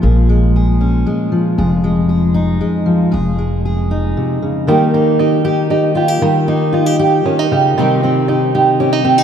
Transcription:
<<
  \new Staff \with { instrumentName = "Five-string banjo" } { \time 3/4 \key ees \mixolydian \tempo 4 = 116 r2. | r2. | r2. | g8 bes8 ees'8 g'8 ees'8 g'8 |
g8 bes8 ees'8 g'8 des'16 ees'16 g'8 | g8 c'8 ees'8 g'8 des'16 ees'16 g'8 | }
  \new Staff \with { instrumentName = "Steel-string acoustic guitar" } { \time 3/4 \key ees \mixolydian << { <aes aes'>8 aes8 aes'8 des'8 aes4 | aes'8 aes8 aes'8 ees'8 aes4 | aes'8 aes8 aes'8 ees'4. | <bes ees' g'>8 ees'8 g'8 g'8 g'8 f'16 g'16 |
r8 ees'8 f'16 g'16 g'4. | <ees c' ees' g'>8 c'8 g'8 ees'8 g'8 c'16 ees'16 | } \\ { bes,2~ bes,8 f8 | f,2~ f,8 f8 | f,2 c8 des8 | ees2. |
ees2 ees8 des8 | c2. | } >> }
  \new Staff \with { instrumentName = "Upright bass" } { \clef bass \time 3/4 \key ees \mixolydian bes,,2 r4 | f,,2 r4 | f,,2 r4 | r2. |
r2. | r2. | }
>>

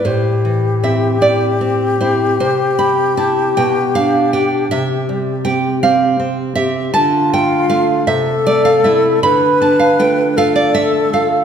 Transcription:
<<
  \new Staff \with { instrumentName = "Flute" } { \time 6/8 \key a \minor \tempo 4. = 52 g'2.~ | g'2.~ | g'2~ g'8 r8 | f'4. a'4. |
b'4. a'4. | }
  \new Staff \with { instrumentName = "Nylon-string guitar" } { \time 6/8 \key a \minor << { c''4 e''8 d''4 c''8 | c''8 b''8 a''8 g''8 f''8 g''8 | e''4 g''8 f''4 e''8 | a''8 g''8 f''8 e''8 d''16 f''16 e''8 |
b''8 a''16 f''16 g''8 f''16 d''16 e''8 f''8 | } \\ { a,8 e8 <c' e'>8 <c' e'>8 c'8 <c' e'>8 | c8 c'8 <c' e'>8 b,8 d'8 <d' g'>8 | c8 g8 <c' g'>8 <c' g'>8 c'8 <c' g'>8 | d8 a8 <a f'>8 c8 a8 <a e'>8 |
d8 d'8 <a f'>8 <a f'>8 a8 <a f'>8 | } >> }
>>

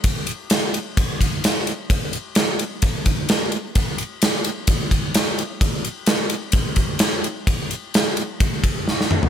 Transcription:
\new DrumStaff \with { instrumentName = "Drums" } \drummode { \time 4/4 \tempo 4 = 129 <bd cymr>8 cymr8 <cymr sn>8 cymr8 <bd cymr>8 <bd cymr>8 <cymr sn>8 cymr8 | <bd cymr>8 cymr8 <cymr sn>8 cymr8 <bd cymr>8 <bd cymr>8 <cymr sn>8 cymr8 | <bd cymr>8 cymr8 <cymr sn>8 cymr8 <bd cymr>8 <bd cymr>8 <cymr sn>8 cymr8 | <bd cymr>8 cymr8 <cymr sn>8 cymr8 <bd cymr>8 <bd cymr>8 <cymr sn>8 cymr8 |
<bd cymr>8 cymr8 <cymr sn>8 cymr8 <bd cymr>8 <bd cymr>8 sn16 sn16 toml16 tomfh16 | }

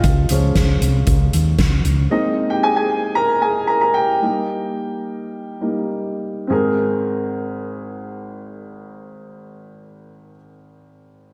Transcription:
<<
  \new Staff \with { instrumentName = "Upright piano" } { \time 4/4 \key aes \major \tempo 4 = 105 <f' f''>2~ <f' f''>8 r4. | <ees' ees''>8. <g' g''>16 <aes' aes''>16 <aes' aes''>8. <bes' bes''>8 <aes' aes''>8 <bes' bes''>16 <bes' bes''>16 <g' g''>8~ | <g' g''>2. r4 | <c' aes' bes'>1~ |
<c' aes' bes'>1 | }
  \new Staff \with { instrumentName = "Upright piano" } { \time 4/4 \key aes \major r8 <f aes des'>8 r2. | <aes bes c'>1 | <g bes ees'>2~ <g bes ees'>8 <g bes ees'>8 r4 | aes,,1~ |
aes,,1 | }
  \new Staff \with { instrumentName = "Fretless electric bass" } { \clef bass \time 4/4 \key aes \major des,8 des,8 des,8 c,8 des,8 ees,8 des,8 des,8 | r1 | r1 | r1 |
r1 | }
  \new DrumStaff \with { instrumentName = "Drums" } \drummode { \time 4/4 <hh bd>8 hh8 <hh bd sn>8 hh8 <hh bd>8 hh8 <hh bd sn>8 hh8 | r4 r4 r4 r4 | r4 r4 r4 r4 | r4 r4 r4 r4 |
r4 r4 r4 r4 | }
>>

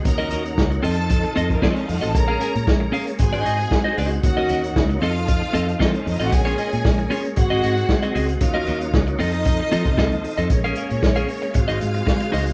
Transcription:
<<
  \new Staff \with { instrumentName = "String section" } { \time 4/4 \key bes \minor \tempo 4 = 115 <bes' bes''>4 r8 <a' a''>8~ \tuplet 3/2 { <a' a''>4 r16 <bes bes'>16 <c' c''>16 <des' des''>16 <ees' ees''>16 <f' f''>16 <ges' ges''>16 <a' a''>16 } | <bes' bes''>4. r8 <aes' aes''>4. r8 | <ges' ges''>4 r8 <f' f''>4. \tuplet 3/2 { <bes bes'>16 <c' c''>16 <des' des''>16 <ees' ees''>16 <f' f''>16 <ges' ges''>16 } | <aes' aes''>4. r8 <ges' ges''>4. r8 |
<f' f''>4 r8 <ees' ees''>2 r8 | <des' des''>2 <f' f''>2 | }
  \new Staff \with { instrumentName = "Clean electric guitar" } { \time 4/4 \key bes \minor r16 <des' ges' bes' ees''>16 <des' ges' bes' ees''>16 r8. <c' f' a' ees''>16 r8. <c' f' a' ees''>16 r16 <c' f' a' ees''>8 r16 <c' f' a' ees''>16 | r16 <des' aes' bes' f''>16 <des' aes' bes' aes''>16 r8. <des' aes' bes' f''>16 r8 <ees' ges' c'' ees''>16 <ees' ges' c'' ees''>16 r8 <ees' ges' c'' ees''>16 <ees' ges' c'' ees''>8 | r16 <des' ges' bes' ees''>16 <des' ges' bes' ees''>16 r8. <c' f' a' ees''>16 r8. <c' f' a' ees''>16 r16 <c' f' a' ees''>16 r8 <c' f' a' ees''>16 | r16 <des' f' aes' des''>16 <des' f' aes' ees''>16 r8. <des' f' aes' des''>16 r8 <c' ges' aes' ees''>16 <c' ges' aes' ees''>16 r8 <c' ges' aes' ees''>16 <c' ges' aes' ees''>16 r16 |
r16 <des' ges' bes' ees''>16 <des' ges' bes' ees''>16 r8. <c' f' a' ees''>16 r8. <c' f' a' ees''>16 r16 <c' f' a' ees''>16 r8 <c' f' a' ees''>16 | r16 <des' aes' bes' f''>16 <des' aes' bes' f''>16 r8 <des' aes' bes' f''>16 r8. <ees' ges' c'' ees''>16 r4 <ees' ges' c'' ees''>16 r16 | }
  \new Staff \with { instrumentName = "Tonewheel organ" } { \time 4/4 \key bes \minor ges'4. a'2~ a'8 | des'2 ges'2~ | ges'4. a'2~ a'8 | des'2 ges'2 |
ges4. a'2~ a'8 | des'2 c'2 | }
  \new Staff \with { instrumentName = "Tonewheel organ" } { \time 4/4 \key bes \minor << { <ees des'>4. <f ees'>2~ <f ees'>8 | bes2 c'2 | <ees des'>4. <f ees'>2~ <f ees'>8 | bes2 c'2 |
<ees des'>4. <f ees'>2~ <f ees'>8 | bes2 aes2 | } \\ { bes4. c'2~ c'8 | aes1 | bes4. c'2~ c'8 | aes1 |
bes4. c'2~ c'8 | aes2 ges2 | } >> }
  \new Staff \with { instrumentName = "Fingered electric bass" } { \clef bass \time 4/4 \key bes \minor ees,8 ees,8 des,8 f,4 f,8 f16 r16 f,16 a,,16 | bes,,8 r16 bes,16 bes,,8 r8 aes,,16 aes,,16 aes,8 r8 des,8 | ees,8 ees,8 des,8 f,4 f,8 f16 r16 f,16 a,,16 | bes,,8 r16 bes,16 bes,,8 r8 aes,,16 aes,,16 aes,8 r8 des,8 |
ees,8 ees,8 des,8 f,4 f16 c16 c,16 ees,16 r16 f,16 | bes,,8 r16 bes,16 bes,,8 r8 aes,,16 aes,,16 aes,8 r8 des,8 | }
  \new DrumStaff \with { instrumentName = "Drums" } \drummode { \time 4/4 <hh bd>16 hh16 hh16 hh16 <bd sn>16 hh16 hho16 hh16 <hh bd>16 hh16 hh16 <hh bd>16 <bd sn>16 hh16 <hho sn>16 hh16 | <hh bd>8 hh16 hh16 <bd sn>8 hho16 hh16 <hh bd>16 hh16 hh16 hh16 <bd sn>8 hho16 hh16 | <hh bd>8 hh16 hh16 <bd sn>16 hh16 hho16 hh16 <hh bd>8 hh16 hh16 <bd sn>16 hh16 hho16 hh16 | <hh bd>16 hh16 hh16 hh16 <bd sn>16 hh16 hho16 hh16 <hh bd>8 hh16 hh16 <bd sn>16 hh16 hho16 hh16 |
<hh bd>8 hh16 hh16 <bd sn>16 hh16 hho16 hh16 <hh bd>8 hh16 <hh bd>16 <bd sn>16 hh16 hho16 hh16 | <hh bd>16 hh16 hh16 hh16 <bd sn>16 hh16 hho16 hh16 <hh bd>16 hh16 hh16 hh16 <bd sn>16 hh16 <hho sn>16 hh16 | }
>>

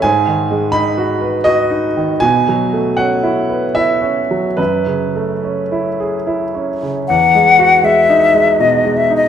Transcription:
<<
  \new Staff \with { instrumentName = "Flute" } { \time 3/4 \key e \major \tempo 4 = 78 r2. | r2. | r2. | fis''4 e''4 dis''8 e''16 dis''16 | }
  \new Staff \with { instrumentName = "Grand piano" } { \time 3/4 \key e \major gis''4 b''4 dis''4 | gis''4 fis''4 e''4 | b'2~ b'8 r8 | r2. | }
  \new Staff \with { instrumentName = "Grand piano" } { \time 3/4 \key e \major \tuplet 3/2 { gis,8 dis8 gis8 dis'8 fis'8 b'8 fis'8 dis'8 dis8 } | \tuplet 3/2 { b,8 fis8 a8 cis'8 e'8 b'8 e'8 cis'8 fis8 } | \tuplet 3/2 { fis,8 cis8 a8 cis'8 e'8 gis'8 e'8 cis'8 cis8 } | \tuplet 3/2 { e,8 gis8 fis'8 gis8 dis'8 gis8 b,8 gis8 dis'8 } | }
>>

